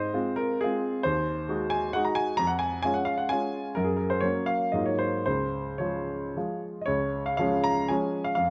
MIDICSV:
0, 0, Header, 1, 2, 480
1, 0, Start_track
1, 0, Key_signature, -5, "major"
1, 0, Tempo, 449102
1, 1109, Time_signature, 3, 2, 24, 8
1, 2538, Tempo, 465116
1, 4458, Tempo, 512383
1, 5418, Tempo, 548948
1, 6378, Tempo, 519481
1, 7338, Tempo, 483871
1, 8432, End_track
2, 0, Start_track
2, 0, Title_t, "Grand piano"
2, 0, Program_c, 0, 0
2, 0, Control_c, 0, 64, 127
2, 0, Note_on_c, 0, 44, 47
2, 0, Note_on_c, 0, 72, 70
2, 0, Note_on_c, 0, 75, 72
2, 127, Note_off_c, 0, 44, 0
2, 145, Note_on_c, 0, 56, 42
2, 151, Note_on_c, 0, 60, 42
2, 151, Note_on_c, 0, 65, 42
2, 154, Control_c, 0, 64, 0
2, 160, Note_off_c, 0, 75, 0
2, 386, Note_on_c, 0, 70, 77
2, 392, Note_off_c, 0, 72, 0
2, 602, Note_off_c, 0, 56, 0
2, 605, Note_off_c, 0, 60, 0
2, 605, Note_off_c, 0, 65, 0
2, 639, Note_off_c, 0, 70, 0
2, 649, Note_on_c, 0, 68, 74
2, 672, Note_on_c, 0, 56, 39
2, 675, Note_on_c, 0, 60, 41
2, 680, Note_on_c, 0, 65, 45
2, 1081, Note_off_c, 0, 56, 0
2, 1083, Note_off_c, 0, 60, 0
2, 1086, Note_off_c, 0, 65, 0
2, 1105, Note_on_c, 0, 72, 78
2, 1113, Note_off_c, 0, 68, 0
2, 1122, Note_on_c, 0, 39, 51
2, 1302, Control_c, 0, 64, 127
2, 1579, Note_off_c, 0, 39, 0
2, 1589, Note_on_c, 0, 56, 43
2, 1592, Note_on_c, 0, 63, 41
2, 1598, Note_on_c, 0, 66, 44
2, 1817, Note_on_c, 0, 80, 81
2, 1830, Note_off_c, 0, 72, 0
2, 2028, Note_off_c, 0, 56, 0
2, 2029, Note_off_c, 0, 63, 0
2, 2032, Note_off_c, 0, 66, 0
2, 2062, Note_off_c, 0, 80, 0
2, 2066, Note_on_c, 0, 78, 82
2, 2084, Control_c, 0, 64, 0
2, 2085, Note_on_c, 0, 56, 39
2, 2087, Note_on_c, 0, 63, 43
2, 2090, Note_on_c, 0, 66, 44
2, 2184, Note_off_c, 0, 78, 0
2, 2187, Note_on_c, 0, 82, 59
2, 2300, Note_on_c, 0, 80, 88
2, 2304, Note_off_c, 0, 82, 0
2, 2504, Note_off_c, 0, 56, 0
2, 2505, Note_off_c, 0, 63, 0
2, 2506, Note_off_c, 0, 66, 0
2, 2534, Note_on_c, 0, 82, 88
2, 2537, Note_off_c, 0, 80, 0
2, 2553, Note_on_c, 0, 41, 57
2, 2638, Note_on_c, 0, 78, 64
2, 2651, Note_off_c, 0, 82, 0
2, 2724, Control_c, 0, 64, 127
2, 2758, Note_on_c, 0, 80, 80
2, 2763, Note_off_c, 0, 78, 0
2, 2987, Note_off_c, 0, 80, 0
2, 3003, Note_on_c, 0, 80, 85
2, 3006, Note_off_c, 0, 41, 0
2, 3020, Note_on_c, 0, 56, 40
2, 3025, Control_c, 0, 64, 0
2, 3027, Note_on_c, 0, 61, 38
2, 3030, Note_on_c, 0, 65, 45
2, 3121, Note_on_c, 0, 78, 57
2, 3133, Note_off_c, 0, 80, 0
2, 3235, Note_on_c, 0, 77, 75
2, 3253, Note_off_c, 0, 78, 0
2, 3365, Note_on_c, 0, 78, 60
2, 3371, Note_off_c, 0, 77, 0
2, 3468, Note_off_c, 0, 56, 0
2, 3472, Note_off_c, 0, 61, 0
2, 3473, Note_off_c, 0, 65, 0
2, 3483, Note_on_c, 0, 80, 83
2, 3497, Note_off_c, 0, 78, 0
2, 3503, Note_on_c, 0, 56, 38
2, 3504, Note_on_c, 0, 61, 38
2, 3514, Note_on_c, 0, 65, 43
2, 3931, Note_off_c, 0, 56, 0
2, 3932, Note_off_c, 0, 61, 0
2, 3937, Note_off_c, 0, 65, 0
2, 3956, Note_on_c, 0, 70, 70
2, 3963, Note_off_c, 0, 80, 0
2, 3974, Note_on_c, 0, 42, 51
2, 4054, Note_on_c, 0, 68, 49
2, 4079, Note_off_c, 0, 70, 0
2, 4179, Note_on_c, 0, 70, 52
2, 4185, Control_c, 0, 64, 127
2, 4189, Note_off_c, 0, 68, 0
2, 4316, Note_off_c, 0, 70, 0
2, 4318, Note_on_c, 0, 72, 66
2, 4427, Note_on_c, 0, 73, 69
2, 4443, Note_off_c, 0, 42, 0
2, 4446, Note_on_c, 0, 54, 37
2, 4447, Note_on_c, 0, 58, 34
2, 4452, Note_off_c, 0, 72, 0
2, 4453, Note_on_c, 0, 61, 42
2, 4467, Control_c, 0, 64, 0
2, 4671, Note_on_c, 0, 77, 71
2, 4682, Note_off_c, 0, 73, 0
2, 4894, Note_off_c, 0, 54, 0
2, 4894, Note_off_c, 0, 58, 0
2, 4897, Note_off_c, 0, 61, 0
2, 4911, Note_on_c, 0, 75, 57
2, 4924, Note_off_c, 0, 77, 0
2, 4926, Note_on_c, 0, 44, 45
2, 4928, Note_on_c, 0, 54, 35
2, 4934, Note_on_c, 0, 58, 34
2, 4943, Note_on_c, 0, 65, 33
2, 5041, Note_on_c, 0, 73, 49
2, 5045, Note_off_c, 0, 75, 0
2, 5100, Control_c, 0, 64, 127
2, 5161, Note_on_c, 0, 72, 64
2, 5171, Note_off_c, 0, 73, 0
2, 5376, Note_off_c, 0, 54, 0
2, 5379, Note_off_c, 0, 58, 0
2, 5383, Note_off_c, 0, 65, 0
2, 5398, Note_off_c, 0, 44, 0
2, 5401, Note_off_c, 0, 72, 0
2, 5415, Note_on_c, 0, 72, 63
2, 5428, Note_on_c, 0, 37, 41
2, 5431, Control_c, 0, 64, 0
2, 5582, Control_c, 0, 64, 127
2, 5872, Note_off_c, 0, 37, 0
2, 5874, Note_on_c, 0, 73, 51
2, 5880, Note_off_c, 0, 72, 0
2, 5888, Note_on_c, 0, 53, 33
2, 5893, Note_on_c, 0, 56, 33
2, 5893, Note_on_c, 0, 65, 32
2, 6347, Note_off_c, 0, 53, 0
2, 6350, Note_off_c, 0, 56, 0
2, 6350, Note_off_c, 0, 65, 0
2, 6387, Note_on_c, 0, 53, 31
2, 6388, Control_c, 0, 64, 0
2, 6388, Note_on_c, 0, 56, 31
2, 6391, Note_on_c, 0, 65, 36
2, 6624, Note_off_c, 0, 73, 0
2, 6800, Note_on_c, 0, 75, 45
2, 6828, Note_off_c, 0, 53, 0
2, 6829, Note_off_c, 0, 56, 0
2, 6831, Note_off_c, 0, 65, 0
2, 6838, Note_on_c, 0, 73, 69
2, 6855, Note_on_c, 0, 37, 48
2, 6863, Note_off_c, 0, 75, 0
2, 7026, Control_c, 0, 64, 127
2, 7203, Note_off_c, 0, 73, 0
2, 7211, Note_on_c, 0, 77, 64
2, 7302, Note_off_c, 0, 77, 0
2, 7316, Note_on_c, 0, 77, 76
2, 7321, Note_off_c, 0, 37, 0
2, 7333, Note_on_c, 0, 53, 47
2, 7337, Note_on_c, 0, 56, 43
2, 7344, Note_on_c, 0, 61, 48
2, 7575, Note_on_c, 0, 82, 80
2, 7586, Note_off_c, 0, 77, 0
2, 7799, Note_off_c, 0, 53, 0
2, 7801, Note_off_c, 0, 56, 0
2, 7805, Note_off_c, 0, 61, 0
2, 7822, Note_on_c, 0, 80, 62
2, 7830, Note_off_c, 0, 82, 0
2, 7837, Note_on_c, 0, 53, 39
2, 7842, Note_on_c, 0, 56, 40
2, 7850, Control_c, 0, 64, 0
2, 7853, Note_on_c, 0, 61, 42
2, 8179, Note_off_c, 0, 80, 0
2, 8179, Note_on_c, 0, 77, 66
2, 8261, Note_off_c, 0, 53, 0
2, 8263, Note_off_c, 0, 56, 0
2, 8269, Note_off_c, 0, 61, 0
2, 8271, Note_off_c, 0, 77, 0
2, 8285, Note_on_c, 0, 77, 71
2, 8305, Note_on_c, 0, 41, 48
2, 8432, Note_off_c, 0, 41, 0
2, 8432, Note_off_c, 0, 77, 0
2, 8432, End_track
0, 0, End_of_file